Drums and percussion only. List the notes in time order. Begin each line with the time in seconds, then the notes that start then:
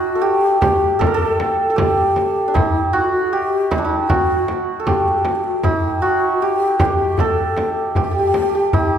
0.62 tombak dum, frame drum
1.01 tombak dum, frame drum
1.20 tombak ka
1.40 tombak tek, frame drum
1.78 frame drum, tombak dum
1.98 tombak ka
2.16 tombak tek, frame drum
2.55 frame drum, tombak dum
3.71 frame drum
4.10 frame drum, tombak dum
4.48 tombak tek, frame drum
4.87 frame drum, tombak dum
5.07 tombak ka
5.25 tombak tek, frame drum
5.63 frame drum, tombak dum
6.80 frame drum, tombak dum
7.18 tombak dum, frame drum
7.37 tombak ka
7.57 tombak tek, frame drum
7.95 tombak dum, frame drum
8.15 tombak ka
8.34 tombak tek, frame drum
8.73 frame drum, tombak dum